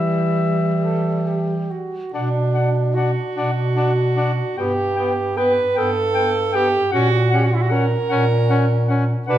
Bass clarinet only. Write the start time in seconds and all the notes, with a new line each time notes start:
Already playing: E3
2.12 B2
3.35 B2
4.55 G2
5.75 G2
6.92 A#2
8.09 A#2
9.27 B2